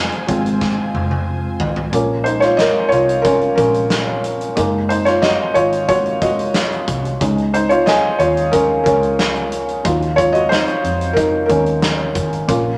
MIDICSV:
0, 0, Header, 1, 5, 480
1, 0, Start_track
1, 0, Key_signature, -5, "minor"
1, 0, Tempo, 659703
1, 1406, Time_signature, 4, 2, 24, 8
1, 9297, End_track
2, 0, Start_track
2, 0, Title_t, "String section"
2, 0, Program_c, 0, 48
2, 0, Note_on_c, 0, 65, 66
2, 0, Note_on_c, 0, 72, 62
2, 0, Note_on_c, 0, 80, 74
2, 1377, Note_off_c, 0, 72, 0
2, 1379, Note_off_c, 0, 65, 0
2, 1379, Note_off_c, 0, 80, 0
2, 9297, End_track
3, 0, Start_track
3, 0, Title_t, "Felt piano"
3, 0, Program_c, 1, 0
3, 0, Control_c, 1, 64, 127
3, 0, Note_on_c, 1, 53, 43
3, 0, Note_on_c, 1, 56, 41
3, 0, Note_on_c, 1, 60, 47
3, 197, Note_off_c, 1, 53, 0
3, 197, Note_on_c, 1, 53, 45
3, 201, Note_off_c, 1, 56, 0
3, 201, Note_on_c, 1, 56, 44
3, 207, Note_off_c, 1, 60, 0
3, 207, Note_on_c, 1, 60, 52
3, 520, Note_off_c, 1, 53, 0
3, 522, Note_off_c, 1, 56, 0
3, 526, Note_off_c, 1, 60, 0
3, 1399, Note_on_c, 1, 53, 42
3, 1405, Note_on_c, 1, 58, 42
3, 1411, Note_on_c, 1, 61, 43
3, 1414, Control_c, 1, 64, 0
3, 1536, Control_c, 1, 64, 127
3, 1628, Note_on_c, 1, 72, 77
3, 1646, Note_on_c, 1, 63, 56
3, 1722, Note_off_c, 1, 53, 0
3, 1724, Note_off_c, 1, 58, 0
3, 1728, Note_off_c, 1, 61, 0
3, 1748, Note_off_c, 1, 72, 0
3, 1748, Note_on_c, 1, 73, 72
3, 1758, Note_off_c, 1, 63, 0
3, 1768, Note_on_c, 1, 65, 57
3, 1869, Note_on_c, 1, 75, 88
3, 1879, Note_off_c, 1, 65, 0
3, 1881, Note_off_c, 1, 73, 0
3, 1886, Note_on_c, 1, 70, 64
3, 2099, Note_on_c, 1, 73, 78
3, 2109, Note_off_c, 1, 70, 0
3, 2125, Note_off_c, 1, 75, 0
3, 2126, Note_on_c, 1, 65, 61
3, 2156, Note_off_c, 1, 73, 0
3, 2180, Note_off_c, 1, 65, 0
3, 2341, Note_on_c, 1, 70, 77
3, 2364, Note_on_c, 1, 61, 57
3, 2575, Note_off_c, 1, 70, 0
3, 2586, Note_on_c, 1, 70, 74
3, 2588, Note_off_c, 1, 61, 0
3, 2610, Note_on_c, 1, 61, 49
3, 3047, Note_off_c, 1, 70, 0
3, 3059, Note_off_c, 1, 61, 0
3, 3315, Note_on_c, 1, 56, 44
3, 3322, Note_on_c, 1, 58, 42
3, 3325, Note_on_c, 1, 63, 49
3, 3336, Control_c, 1, 64, 0
3, 3459, Control_c, 1, 64, 127
3, 3558, Note_on_c, 1, 72, 71
3, 3563, Note_off_c, 1, 63, 0
3, 3574, Note_on_c, 1, 63, 55
3, 3676, Note_on_c, 1, 73, 74
3, 3682, Note_off_c, 1, 63, 0
3, 3685, Note_off_c, 1, 72, 0
3, 3692, Note_on_c, 1, 65, 62
3, 3798, Note_on_c, 1, 75, 83
3, 3801, Note_off_c, 1, 65, 0
3, 3805, Note_off_c, 1, 73, 0
3, 3813, Note_on_c, 1, 66, 68
3, 4033, Note_off_c, 1, 66, 0
3, 4034, Note_on_c, 1, 73, 75
3, 4047, Note_on_c, 1, 65, 56
3, 4049, Note_off_c, 1, 75, 0
3, 4270, Note_off_c, 1, 65, 0
3, 4271, Note_off_c, 1, 73, 0
3, 4281, Note_on_c, 1, 73, 80
3, 4295, Note_on_c, 1, 66, 62
3, 4336, Note_off_c, 1, 73, 0
3, 4348, Note_off_c, 1, 66, 0
3, 4523, Note_on_c, 1, 75, 73
3, 4537, Note_on_c, 1, 66, 60
3, 4975, Note_off_c, 1, 75, 0
3, 4982, Note_off_c, 1, 66, 0
3, 5211, Note_off_c, 1, 56, 0
3, 5214, Note_off_c, 1, 58, 0
3, 5243, Note_on_c, 1, 56, 43
3, 5243, Note_on_c, 1, 61, 38
3, 5248, Note_on_c, 1, 63, 44
3, 5255, Control_c, 1, 64, 0
3, 5382, Control_c, 1, 64, 127
3, 5481, Note_off_c, 1, 63, 0
3, 5483, Note_on_c, 1, 72, 75
3, 5492, Note_on_c, 1, 63, 64
3, 5597, Note_on_c, 1, 73, 78
3, 5600, Note_off_c, 1, 63, 0
3, 5608, Note_off_c, 1, 72, 0
3, 5608, Note_on_c, 1, 65, 68
3, 5634, Note_off_c, 1, 73, 0
3, 5644, Note_off_c, 1, 65, 0
3, 5719, Note_on_c, 1, 75, 89
3, 5734, Note_on_c, 1, 68, 72
3, 5774, Note_off_c, 1, 75, 0
3, 5787, Note_off_c, 1, 68, 0
3, 5956, Note_on_c, 1, 73, 71
3, 5969, Note_on_c, 1, 65, 64
3, 6190, Note_off_c, 1, 65, 0
3, 6195, Note_on_c, 1, 70, 77
3, 6199, Note_off_c, 1, 61, 0
3, 6208, Note_off_c, 1, 73, 0
3, 6210, Note_on_c, 1, 61, 56
3, 6250, Note_off_c, 1, 70, 0
3, 6263, Note_off_c, 1, 61, 0
3, 6429, Note_on_c, 1, 70, 70
3, 6448, Note_on_c, 1, 61, 54
3, 6888, Note_off_c, 1, 70, 0
3, 6897, Note_off_c, 1, 61, 0
3, 7135, Note_off_c, 1, 56, 0
3, 7160, Note_on_c, 1, 54, 41
3, 7166, Note_on_c, 1, 63, 41
3, 7168, Note_on_c, 1, 65, 48
3, 7174, Control_c, 1, 64, 0
3, 7310, Control_c, 1, 64, 127
3, 7393, Note_on_c, 1, 73, 81
3, 7398, Note_off_c, 1, 65, 0
3, 7409, Note_on_c, 1, 65, 61
3, 7482, Note_off_c, 1, 54, 0
3, 7485, Note_off_c, 1, 63, 0
3, 7510, Note_off_c, 1, 73, 0
3, 7513, Note_on_c, 1, 75, 82
3, 7519, Note_off_c, 1, 65, 0
3, 7531, Note_on_c, 1, 66, 65
3, 7630, Note_off_c, 1, 75, 0
3, 7633, Note_on_c, 1, 72, 89
3, 7640, Note_off_c, 1, 66, 0
3, 7652, Note_on_c, 1, 63, 63
3, 8090, Note_off_c, 1, 72, 0
3, 8099, Note_on_c, 1, 70, 71
3, 8100, Note_off_c, 1, 63, 0
3, 8125, Note_on_c, 1, 63, 60
3, 8156, Note_off_c, 1, 70, 0
3, 8179, Note_off_c, 1, 63, 0
3, 8336, Note_on_c, 1, 70, 69
3, 8364, Note_on_c, 1, 61, 52
3, 8801, Note_off_c, 1, 70, 0
3, 8815, Note_off_c, 1, 61, 0
3, 9076, Note_on_c, 1, 58, 39
3, 9077, Note_on_c, 1, 61, 41
3, 9083, Note_on_c, 1, 65, 51
3, 9096, Control_c, 1, 64, 0
3, 9223, Control_c, 1, 64, 127
3, 9297, Note_off_c, 1, 58, 0
3, 9297, Note_off_c, 1, 61, 0
3, 9297, Note_off_c, 1, 65, 0
3, 9297, End_track
4, 0, Start_track
4, 0, Title_t, "Picked electric bass"
4, 0, Program_c, 2, 34
4, 207, Note_on_c, 2, 32, 73
4, 657, Note_off_c, 2, 32, 0
4, 688, Note_on_c, 2, 29, 82
4, 1138, Note_off_c, 2, 29, 0
4, 1165, Note_on_c, 2, 32, 68
4, 1388, Note_off_c, 2, 32, 0
4, 1401, Note_on_c, 2, 34, 90
4, 1974, Note_off_c, 2, 34, 0
4, 2129, Note_on_c, 2, 36, 73
4, 2578, Note_off_c, 2, 36, 0
4, 2600, Note_on_c, 2, 34, 71
4, 3294, Note_off_c, 2, 34, 0
4, 3322, Note_on_c, 2, 30, 88
4, 3895, Note_off_c, 2, 30, 0
4, 4045, Note_on_c, 2, 32, 70
4, 4525, Note_off_c, 2, 32, 0
4, 4525, Note_on_c, 2, 30, 70
4, 4976, Note_off_c, 2, 30, 0
4, 5003, Note_on_c, 2, 36, 84
4, 5227, Note_off_c, 2, 36, 0
4, 5246, Note_on_c, 2, 37, 80
4, 5817, Note_off_c, 2, 37, 0
4, 5960, Note_on_c, 2, 39, 74
4, 6414, Note_off_c, 2, 39, 0
4, 6447, Note_on_c, 2, 37, 79
4, 7137, Note_off_c, 2, 37, 0
4, 7166, Note_on_c, 2, 39, 78
4, 7736, Note_off_c, 2, 39, 0
4, 7886, Note_on_c, 2, 41, 64
4, 8336, Note_off_c, 2, 41, 0
4, 8363, Note_on_c, 2, 39, 77
4, 8844, Note_on_c, 2, 32, 68
4, 8855, Note_off_c, 2, 39, 0
4, 9068, Note_off_c, 2, 32, 0
4, 9085, Note_on_c, 2, 34, 90
4, 9297, Note_off_c, 2, 34, 0
4, 9297, End_track
5, 0, Start_track
5, 0, Title_t, "Drums"
5, 88, Note_on_c, 9, 42, 29
5, 160, Note_off_c, 9, 42, 0
5, 207, Note_on_c, 9, 42, 58
5, 208, Note_on_c, 9, 36, 73
5, 279, Note_off_c, 9, 42, 0
5, 280, Note_off_c, 9, 36, 0
5, 334, Note_on_c, 9, 42, 45
5, 407, Note_off_c, 9, 42, 0
5, 447, Note_on_c, 9, 36, 74
5, 448, Note_on_c, 9, 38, 48
5, 520, Note_off_c, 9, 36, 0
5, 520, Note_off_c, 9, 38, 0
5, 689, Note_on_c, 9, 48, 55
5, 762, Note_off_c, 9, 48, 0
5, 808, Note_on_c, 9, 48, 51
5, 881, Note_off_c, 9, 48, 0
5, 1163, Note_on_c, 9, 43, 82
5, 1236, Note_off_c, 9, 43, 0
5, 1283, Note_on_c, 9, 43, 64
5, 1355, Note_off_c, 9, 43, 0
5, 1404, Note_on_c, 9, 36, 72
5, 1404, Note_on_c, 9, 42, 66
5, 1476, Note_off_c, 9, 36, 0
5, 1477, Note_off_c, 9, 42, 0
5, 1643, Note_on_c, 9, 42, 58
5, 1715, Note_off_c, 9, 42, 0
5, 1759, Note_on_c, 9, 38, 29
5, 1760, Note_on_c, 9, 42, 40
5, 1832, Note_off_c, 9, 38, 0
5, 1833, Note_off_c, 9, 42, 0
5, 1882, Note_on_c, 9, 38, 80
5, 1882, Note_on_c, 9, 42, 59
5, 1955, Note_off_c, 9, 38, 0
5, 1955, Note_off_c, 9, 42, 0
5, 2124, Note_on_c, 9, 42, 53
5, 2196, Note_off_c, 9, 42, 0
5, 2248, Note_on_c, 9, 42, 46
5, 2320, Note_off_c, 9, 42, 0
5, 2362, Note_on_c, 9, 42, 69
5, 2363, Note_on_c, 9, 36, 81
5, 2435, Note_off_c, 9, 42, 0
5, 2436, Note_off_c, 9, 36, 0
5, 2483, Note_on_c, 9, 42, 27
5, 2556, Note_off_c, 9, 42, 0
5, 2602, Note_on_c, 9, 36, 77
5, 2603, Note_on_c, 9, 42, 61
5, 2675, Note_off_c, 9, 36, 0
5, 2675, Note_off_c, 9, 42, 0
5, 2723, Note_on_c, 9, 42, 38
5, 2796, Note_off_c, 9, 42, 0
5, 2840, Note_on_c, 9, 38, 93
5, 2841, Note_on_c, 9, 42, 68
5, 2912, Note_off_c, 9, 38, 0
5, 2913, Note_off_c, 9, 42, 0
5, 3084, Note_on_c, 9, 42, 62
5, 3156, Note_off_c, 9, 42, 0
5, 3207, Note_on_c, 9, 42, 40
5, 3280, Note_off_c, 9, 42, 0
5, 3323, Note_on_c, 9, 42, 69
5, 3324, Note_on_c, 9, 36, 80
5, 3396, Note_off_c, 9, 42, 0
5, 3397, Note_off_c, 9, 36, 0
5, 3566, Note_on_c, 9, 42, 71
5, 3639, Note_off_c, 9, 42, 0
5, 3682, Note_on_c, 9, 38, 31
5, 3683, Note_on_c, 9, 42, 42
5, 3755, Note_off_c, 9, 38, 0
5, 3756, Note_off_c, 9, 42, 0
5, 3802, Note_on_c, 9, 38, 94
5, 3802, Note_on_c, 9, 42, 55
5, 3875, Note_off_c, 9, 38, 0
5, 3875, Note_off_c, 9, 42, 0
5, 4039, Note_on_c, 9, 42, 52
5, 4112, Note_off_c, 9, 42, 0
5, 4165, Note_on_c, 9, 42, 48
5, 4238, Note_off_c, 9, 42, 0
5, 4281, Note_on_c, 9, 42, 66
5, 4284, Note_on_c, 9, 36, 74
5, 4354, Note_off_c, 9, 42, 0
5, 4357, Note_off_c, 9, 36, 0
5, 4406, Note_on_c, 9, 42, 29
5, 4479, Note_off_c, 9, 42, 0
5, 4524, Note_on_c, 9, 36, 78
5, 4524, Note_on_c, 9, 42, 57
5, 4597, Note_off_c, 9, 36, 0
5, 4597, Note_off_c, 9, 42, 0
5, 4649, Note_on_c, 9, 42, 43
5, 4721, Note_off_c, 9, 42, 0
5, 4761, Note_on_c, 9, 38, 95
5, 4762, Note_on_c, 9, 42, 71
5, 4834, Note_off_c, 9, 38, 0
5, 4835, Note_off_c, 9, 42, 0
5, 4890, Note_on_c, 9, 42, 26
5, 4963, Note_off_c, 9, 42, 0
5, 5005, Note_on_c, 9, 36, 74
5, 5007, Note_on_c, 9, 42, 60
5, 5077, Note_off_c, 9, 36, 0
5, 5080, Note_off_c, 9, 42, 0
5, 5129, Note_on_c, 9, 42, 38
5, 5202, Note_off_c, 9, 42, 0
5, 5247, Note_on_c, 9, 36, 78
5, 5249, Note_on_c, 9, 42, 70
5, 5319, Note_off_c, 9, 36, 0
5, 5321, Note_off_c, 9, 42, 0
5, 5370, Note_on_c, 9, 42, 29
5, 5443, Note_off_c, 9, 42, 0
5, 5487, Note_on_c, 9, 42, 68
5, 5560, Note_off_c, 9, 42, 0
5, 5605, Note_on_c, 9, 42, 43
5, 5678, Note_off_c, 9, 42, 0
5, 5726, Note_on_c, 9, 38, 87
5, 5726, Note_on_c, 9, 42, 60
5, 5799, Note_off_c, 9, 38, 0
5, 5799, Note_off_c, 9, 42, 0
5, 5962, Note_on_c, 9, 42, 56
5, 6035, Note_off_c, 9, 42, 0
5, 6090, Note_on_c, 9, 42, 47
5, 6163, Note_off_c, 9, 42, 0
5, 6204, Note_on_c, 9, 42, 72
5, 6206, Note_on_c, 9, 36, 80
5, 6276, Note_off_c, 9, 42, 0
5, 6279, Note_off_c, 9, 36, 0
5, 6447, Note_on_c, 9, 36, 80
5, 6448, Note_on_c, 9, 42, 60
5, 6520, Note_off_c, 9, 36, 0
5, 6521, Note_off_c, 9, 42, 0
5, 6570, Note_on_c, 9, 42, 38
5, 6642, Note_off_c, 9, 42, 0
5, 6688, Note_on_c, 9, 38, 97
5, 6689, Note_on_c, 9, 42, 70
5, 6761, Note_off_c, 9, 38, 0
5, 6762, Note_off_c, 9, 42, 0
5, 6807, Note_on_c, 9, 42, 26
5, 6880, Note_off_c, 9, 42, 0
5, 6925, Note_on_c, 9, 42, 67
5, 6998, Note_off_c, 9, 42, 0
5, 7047, Note_on_c, 9, 42, 38
5, 7120, Note_off_c, 9, 42, 0
5, 7166, Note_on_c, 9, 42, 67
5, 7167, Note_on_c, 9, 36, 81
5, 7239, Note_off_c, 9, 42, 0
5, 7240, Note_off_c, 9, 36, 0
5, 7292, Note_on_c, 9, 42, 28
5, 7365, Note_off_c, 9, 42, 0
5, 7409, Note_on_c, 9, 36, 72
5, 7413, Note_on_c, 9, 42, 69
5, 7482, Note_off_c, 9, 36, 0
5, 7485, Note_off_c, 9, 42, 0
5, 7529, Note_on_c, 9, 42, 41
5, 7602, Note_off_c, 9, 42, 0
5, 7653, Note_on_c, 9, 38, 86
5, 7653, Note_on_c, 9, 42, 55
5, 7726, Note_off_c, 9, 38, 0
5, 7726, Note_off_c, 9, 42, 0
5, 7768, Note_on_c, 9, 42, 32
5, 7841, Note_off_c, 9, 42, 0
5, 7890, Note_on_c, 9, 42, 56
5, 7963, Note_off_c, 9, 42, 0
5, 8011, Note_on_c, 9, 42, 48
5, 8083, Note_off_c, 9, 42, 0
5, 8125, Note_on_c, 9, 36, 79
5, 8126, Note_on_c, 9, 42, 73
5, 8198, Note_off_c, 9, 36, 0
5, 8199, Note_off_c, 9, 42, 0
5, 8364, Note_on_c, 9, 36, 71
5, 8367, Note_on_c, 9, 42, 57
5, 8437, Note_off_c, 9, 36, 0
5, 8439, Note_off_c, 9, 42, 0
5, 8485, Note_on_c, 9, 42, 41
5, 8557, Note_off_c, 9, 42, 0
5, 8603, Note_on_c, 9, 38, 97
5, 8604, Note_on_c, 9, 42, 64
5, 8676, Note_off_c, 9, 38, 0
5, 8677, Note_off_c, 9, 42, 0
5, 8841, Note_on_c, 9, 42, 63
5, 8842, Note_on_c, 9, 36, 70
5, 8914, Note_off_c, 9, 42, 0
5, 8915, Note_off_c, 9, 36, 0
5, 8968, Note_on_c, 9, 42, 43
5, 9041, Note_off_c, 9, 42, 0
5, 9085, Note_on_c, 9, 36, 79
5, 9087, Note_on_c, 9, 42, 70
5, 9158, Note_off_c, 9, 36, 0
5, 9159, Note_off_c, 9, 42, 0
5, 9297, End_track
0, 0, End_of_file